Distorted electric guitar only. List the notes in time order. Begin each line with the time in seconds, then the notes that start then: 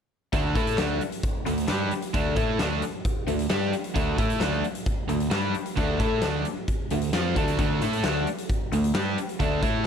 0.33 D3 A3 D4
0.55 A3 E4 A4
0.79 D3 A3 D4
1.46 D3 A3
1.69 G3 D4 G4
1.93 muted distorted electric guitar stroke
2.13 D3 A3 D4
2.36 A3 E4 A4
2.59 D3 A3 D4
3.28 D3 A3
3.49 G3 D4 G4
3.72 muted distorted electric guitar stroke
3.94 D3 A3 D4
4.17 A3 E4 A4
4.41 D3 A3 D4
5.08 D3 A3
5.30 G3 D4 G4
5.54 muted distorted electric guitar stroke
5.76 D3 A3 D4
5.99 A3 E4 A4
6.22 D3 A3 D4
6.92 D3 A3
7.13 F3 C4 F4
7.36 D3 A3 D4
7.59 D3 A3 D4
7.82 A3 E4 A4
8.04 D3 A3 D4
8.73 D3 A3
8.95 G3 D4 G4
9.17 muted distorted electric guitar stroke
9.39 D3 A3 D4
9.62 A3 E4 A4